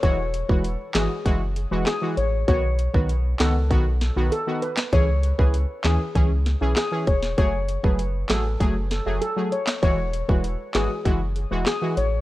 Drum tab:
HH |x-x-x-x-x-x-x-x-|x-x-x-x-x-x-x-x-|x-x-x-x-x-x-x-x-|x-x-x-x-x-x-x-x-|
CP |------x-----x---|------x--------x|------x-----x---|------x--------x|
SD |------o-----o---|------o---o----o|------o---o-o--o|------o---o----o|
BD |o--o----o-------|o--o----o-------|o--o----o-----o-|o--o----o-------|

HH |x-x-x-x-x-x-x-x-|
CP |------x-----x---|
SD |------o-----o---|
BD |o--o----o-------|